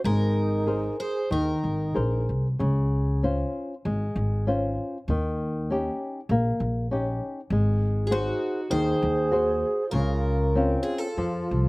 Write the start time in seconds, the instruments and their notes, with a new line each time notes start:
0.04 upright bass G#1, nylon-string guitar G#3, bansuri D#4, twelve-string acoustic guitar A#4
0.67 nylon-string guitar G#4 A#4 C5
1.00 bansuri G#4, twelve-string acoustic guitar C5
1.31 upright bass D#2, nylon-string guitar D#3, bansuri D#4, twelve-string acoustic guitar A#4
1.64 upright bass G#1
1.94 upright bass A#1, nylon-string guitar G#4 A#4 C5
2.29 upright bass C2
2.59 upright bass C#2, nylon-string guitar C#3
3.23 nylon-string guitar C#4 F4 C5
3.85 upright bass G#1, nylon-string guitar G#3
4.16 upright bass G#1
4.47 nylon-string guitar C#4 F4 C5
5.08 upright bass D#2, nylon-string guitar D#3
5.70 nylon-string guitar C#4 D#4 G4
6.29 upright bass A#1, nylon-string guitar A#3
6.60 upright bass A#1
6.91 nylon-string guitar C#4 D#4 G4
7.50 upright bass G#1, nylon-string guitar G#3
8.03 bansuri F4, twelve-string acoustic guitar G#4
8.11 bansuri D#4, nylon-string guitar F#4 G#4 C5, twelve-string acoustic guitar F#4
8.70 upright bass D#2, nylon-string guitar D#3, bansuri G#4, twelve-string acoustic guitar C5
9.02 upright bass D#2
9.32 nylon-string guitar F#4 G#4 C5
9.88 bansuri F4, twelve-string acoustic guitar A#4
9.93 upright bass C#2, nylon-string guitar C#3
10.55 nylon-string guitar C4 C#4 F4
10.81 bansuri F4, twelve-string acoustic guitar G#4
10.98 bansuri F4, twelve-string acoustic guitar A4
11.17 upright bass F2, nylon-string guitar F3
11.51 upright bass C2